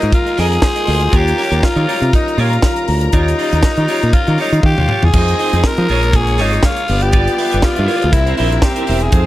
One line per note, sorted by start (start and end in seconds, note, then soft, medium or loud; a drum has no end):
0.00 0.11 G#2 loud
0.00 4.98 D#3 medium
0.00 1.08 G#3 medium
0.00 1.09 A#3 medium
0.00 0.14 D#4 medium
0.00 4.98 F4 medium
0.00 0.60 A#4 medium
0.00 0.60 A#5 medium
0.00 muted clean electric guitar stroke soft
0.00 closed hi-hat soft
0.12 0.41 F4 medium
0.12 muted clean electric guitar stroke soft
0.12 kick loud
0.12 closed hi-hat medium
0.25 0.36 G#4 soft
0.25 0.36 A#4 soft
0.25 0.38 D#5 medium
0.25 closed hi-hat soft
0.37 0.57 F2 medium
0.37 0.58 G#4 medium
0.37 1.17 G#4 loud
0.37 0.52 A#4 medium
0.37 0.51 D#5 medium
0.37 snare soft
0.37 open hi-hat medium
0.52 muted clean electric guitar stroke soft
0.52 closed hi-hat soft
0.62 1.12 C5 medium
0.62 1.12 C6 medium
0.62 muted clean electric guitar stroke soft
0.62 kick loud
0.62 snare loud
0.75 0.85 G#4 medium
0.75 0.86 A#4 medium
0.75 0.86 D#5 medium
0.75 closed hi-hat medium
0.86 1.07 D2 medium
0.86 1.04 G#4 medium
0.86 1.01 A#4 medium
0.86 0.99 D#5 medium
0.86 open hi-hat medium
1.00 muted clean electric guitar stroke soft
1.00 closed hi-hat soft
1.11 1.32 D#2 loud
1.11 4.98 G3 medium
1.11 4.98 C#4 medium
1.11 1.33 F4 medium
1.11 1.33 G4 medium
1.11 4.60 A#4 medium
1.11 1.33 C#5 medium
1.11 4.60 A#5 medium
1.11 kick loud
1.11 closed hi-hat medium
1.16 1.66 G4 loud
1.28 closed hi-hat soft
1.36 1.51 F4 medium
1.36 1.50 G4 medium
1.36 1.49 C#5 medium
1.36 open hi-hat medium
1.50 1.60 D#2 medium
1.50 1.61 F4 medium
1.50 1.62 G4 medium
1.50 1.62 C#5 medium
1.50 closed hi-hat soft
1.63 2.14 F4 medium
1.63 muted clean electric guitar stroke soft
1.63 kick loud
1.63 snare loud
1.76 1.85 D#3 loud
1.76 1.85 F4 soft
1.76 1.86 G4 medium
1.76 1.87 C#5 medium
1.76 closed hi-hat soft
1.86 2.08 F4 medium
1.86 2.01 G4 loud
1.86 2.00 C#5 loud
1.86 open hi-hat medium
2.02 2.10 C3 medium
2.02 muted clean electric guitar stroke soft
2.02 closed hi-hat soft
2.12 2.42 D#4 medium
2.12 muted clean electric guitar stroke medium
2.12 kick loud
2.12 closed hi-hat medium
2.26 muted clean electric guitar stroke soft
2.26 closed hi-hat soft
2.37 2.57 A#2 medium
2.37 2.58 F4 medium
2.37 2.88 F4 medium
2.37 2.52 G4 medium
2.37 2.51 C#5 loud
2.37 open hi-hat medium
2.52 muted clean electric guitar stroke soft
2.52 closed hi-hat medium
2.62 muted clean electric guitar stroke soft
2.62 kick medium
2.62 snare loud
2.76 muted clean electric guitar stroke soft
2.76 closed hi-hat soft
2.88 3.07 D2 medium
2.88 open hi-hat medium
3.01 muted clean electric guitar stroke soft
3.01 closed hi-hat medium
3.12 3.32 D#2 medium
3.12 4.14 D#4 medium
3.12 3.34 F4 medium
3.12 3.34 G4 medium
3.12 3.35 C#5 medium
3.12 kick medium
3.12 closed hi-hat medium
3.28 closed hi-hat soft
3.38 3.53 F4 medium
3.38 3.52 G4 medium
3.38 3.51 D#5 medium
3.38 open hi-hat medium
3.52 3.61 D#2 medium
3.52 3.61 F4 medium
3.52 3.62 G4 medium
3.52 3.63 D#5 medium
3.52 closed hi-hat soft
3.62 muted clean electric guitar stroke soft
3.62 kick loud
3.62 snare loud
3.76 3.86 D#3 loud
3.76 3.87 F4 soft
3.76 3.87 G4 medium
3.76 3.89 D#5 medium
3.76 closed hi-hat soft
3.88 4.09 F4 medium
3.88 4.02 G4 loud
3.88 4.00 C#5 medium
3.88 open hi-hat medium
4.01 4.11 A#2 medium
4.01 muted clean electric guitar stroke soft
4.01 closed hi-hat medium
4.13 4.38 F4 loud
4.13 muted clean electric guitar stroke soft
4.13 kick loud
4.13 closed hi-hat medium
4.27 4.36 D#3 loud
4.27 4.37 F4 soft
4.27 4.38 G4 medium
4.27 4.39 C#5 medium
4.27 closed hi-hat soft
4.38 4.63 D#4 medium
4.38 4.59 F4 medium
4.38 4.53 G4 medium
4.38 4.52 C#5 loud
4.38 open hi-hat medium
4.52 4.61 D#3 loud
4.52 muted clean electric guitar stroke soft
4.52 closed hi-hat soft
4.63 4.74 D#3 loud
4.63 5.13 F4 medium
4.63 5.06 G4 loud
4.63 5.12 F5 medium
4.63 muted clean electric guitar stroke soft
4.63 kick loud
4.63 high tom medium
4.78 4.86 D#2 medium
4.78 4.89 F4 medium
4.78 4.90 G4 medium
4.78 4.90 C#5 medium
4.78 mid tom medium
4.89 5.06 F4 medium
4.89 5.04 G4 medium
4.89 5.03 C#5 medium
4.89 mid tom medium
5.03 5.11 E2 loud
5.03 5.68 G#4 loud
5.03 muted clean electric guitar stroke soft
5.03 floor tom medium
5.13 5.33 F2 loud
5.13 5.88 D#3 medium
5.13 6.87 G#3 medium
5.13 5.87 C4 medium
5.13 5.88 C4 medium
5.13 5.34 D#4 medium
5.13 8.11 F4 medium
5.13 5.87 G#4 medium
5.13 5.35 G#4 medium
5.13 5.35 C5 medium
5.13 5.87 D#5 medium
5.13 kick loud
5.13 crash loud
5.28 closed hi-hat soft
5.38 5.54 D#4 medium
5.38 5.53 G#4 medium
5.38 5.52 C5 medium
5.38 open hi-hat medium
5.53 5.61 F2 medium
5.53 5.63 D#4 medium
5.53 5.63 G#4 medium
5.53 5.64 C5 medium
5.53 closed hi-hat soft
5.64 6.17 A#4 loud
5.64 muted clean electric guitar stroke soft
5.64 kick loud
5.64 snare loud
5.77 5.86 F3 loud
5.77 5.88 D#4 medium
5.77 5.89 G#4 medium
5.77 5.90 C5 medium
5.77 closed hi-hat soft
5.88 6.39 A#1 medium
5.88 6.87 C#3 medium
5.88 6.88 A#3 medium
5.88 6.87 A#3 medium
5.88 6.09 F4 medium
5.88 6.87 G#4 medium
5.88 6.02 G#4 loud
5.88 6.87 C#5 medium
5.88 6.01 C#5 loud
5.88 open hi-hat medium
6.02 muted clean electric guitar stroke soft
6.02 closed hi-hat medium
6.12 6.43 G#4 loud
6.12 muted clean electric guitar stroke medium
6.12 kick loud
6.12 closed hi-hat medium
6.27 muted clean electric guitar stroke soft
6.27 closed hi-hat soft
6.37 6.58 G#1 loud
6.37 6.58 F4 medium
6.37 6.52 G#4 loud
6.37 6.51 C#5 loud
6.37 snare soft
6.37 open hi-hat medium
6.41 6.66 D#4 medium
6.52 muted clean electric guitar stroke soft
6.52 closed hi-hat soft
6.63 7.04 F4 medium
6.63 kick loud
6.63 snare loud
6.76 muted clean electric guitar stroke soft
6.76 closed hi-hat medium
6.88 7.27 G1 medium
6.88 8.12 D3 medium
6.88 9.10 G3 medium
6.88 8.10 B3 medium
6.88 8.12 B3 medium
6.88 8.11 G4 loud
6.88 8.11 D5 loud
6.88 open hi-hat medium
7.01 7.66 G4 loud
7.01 muted clean electric guitar stroke soft
7.01 closed hi-hat medium
7.12 7.33 F4 medium
7.12 7.34 B4 medium
7.12 7.34 D5 loud
7.12 kick loud
7.12 closed hi-hat medium
7.27 closed hi-hat medium
7.37 7.52 F4 medium
7.37 7.51 B4 medium
7.37 7.50 E5 medium
7.37 open hi-hat medium
7.52 7.62 G1 medium
7.52 7.61 F4 soft
7.52 7.62 B4 medium
7.52 7.63 E5 medium
7.52 closed hi-hat medium
7.62 8.14 F4 medium
7.62 kick loud
7.62 snare loud
7.75 7.84 F4 medium
7.75 7.85 B4 medium
7.75 7.87 E5 medium
7.75 closed hi-hat soft
7.79 7.87 G2 loud
7.86 8.07 F4 medium
7.86 8.01 B4 loud
7.86 7.99 D5 loud
7.86 open hi-hat medium
8.00 8.12 D2 medium
8.00 muted clean electric guitar stroke soft
8.00 closed hi-hat medium
8.12 8.32 C2 loud
8.12 9.11 C3 medium
8.12 9.11 A#3 medium
8.12 9.11 C4 medium
8.12 9.11 E4 medium
8.12 8.37 E4 loud
8.12 9.11 A#4 medium
8.12 9.11 E5 medium
8.12 muted clean electric guitar stroke soft
8.12 kick loud
8.12 closed hi-hat medium
8.25 8.35 E4 soft
8.25 8.37 A#4 medium
8.25 8.37 C5 medium
8.25 closed hi-hat soft
8.37 8.58 A#1 medium
8.37 8.58 E4 medium
8.37 8.64 E4 medium
8.37 8.51 A#4 medium
8.37 8.50 C5 loud
8.37 open hi-hat medium
8.51 muted clean electric guitar stroke soft
8.51 closed hi-hat soft
8.61 9.04 G4 medium
8.61 muted clean electric guitar stroke soft
8.61 kick loud
8.61 snare loud
8.76 8.85 E4 medium
8.76 8.86 A#4 medium
8.76 8.87 C5 medium
8.76 closed hi-hat medium
8.86 9.08 E1 medium
8.86 9.04 E4 medium
8.86 9.00 A#4 medium
8.86 8.99 C5 medium
8.86 open hi-hat medium
9.00 9.26 G#4 medium
9.00 muted clean electric guitar stroke soft
9.00 closed hi-hat medium
9.10 9.26 F2 medium
9.10 9.26 D#3 medium
9.10 9.26 G#3 medium
9.10 9.26 C4 medium
9.10 9.26 D#4 medium
9.10 9.26 F4 loud
9.10 9.26 G#4 medium
9.10 9.26 C5 medium
9.10 9.26 F5 medium
9.10 kick loud
9.10 closed hi-hat medium